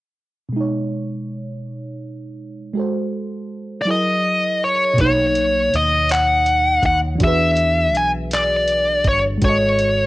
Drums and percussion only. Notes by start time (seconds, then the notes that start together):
4.98 kick, closed hi-hat
5.35 closed hi-hat
5.74 closed hi-hat
6.09 clap, closed hi-hat
6.46 closed hi-hat
6.83 kick, closed hi-hat
7.20 kick, closed hi-hat
7.57 closed hi-hat
7.95 closed hi-hat
8.31 clap, closed hi-hat
8.68 closed hi-hat
9.04 kick, closed hi-hat
9.42 kick, closed hi-hat
9.79 closed hi-hat